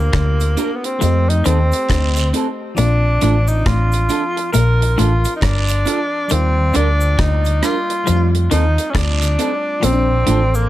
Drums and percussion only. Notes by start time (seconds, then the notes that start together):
0.13 kick, cross-stick, closed hi-hat
0.40 closed hi-hat, cabasa
0.57 closed hi-hat, cabasa
0.84 closed hi-hat
1.01 closed hi-hat, cabasa
1.30 closed hi-hat
1.45 closed hi-hat, cabasa
1.72 closed hi-hat, cabasa
1.89 kick, cross-stick, closed hi-hat, long guiro
2.16 closed hi-hat, cabasa
2.34 closed hi-hat, cabasa
2.77 closed hi-hat, cabasa
3.21 closed hi-hat, cabasa
3.48 cabasa
3.66 kick, cross-stick, closed hi-hat
3.92 closed hi-hat, cabasa
4.09 closed hi-hat, cabasa
4.37 closed hi-hat
4.53 closed hi-hat, cabasa
4.82 closed hi-hat
4.98 closed hi-hat, cabasa
5.25 closed hi-hat, cabasa
5.41 kick, cross-stick, closed hi-hat, long guiro
5.68 closed hi-hat, cabasa
5.86 closed hi-hat, cabasa
6.29 closed hi-hat, cabasa
6.73 closed hi-hat, cabasa
7.01 cabasa
7.19 kick, cross-stick, closed hi-hat
7.45 closed hi-hat, cabasa
7.63 cross-stick, closed hi-hat, cabasa
7.90 closed hi-hat
8.07 closed hi-hat, cabasa
8.35 closed hi-hat
8.51 closed hi-hat, cabasa
8.78 closed hi-hat, cabasa
8.95 kick, cross-stick, closed hi-hat, long guiro
9.22 closed hi-hat, cabasa
9.39 closed hi-hat, cabasa
9.83 closed hi-hat, cabasa
10.27 closed hi-hat, cabasa
10.55 cabasa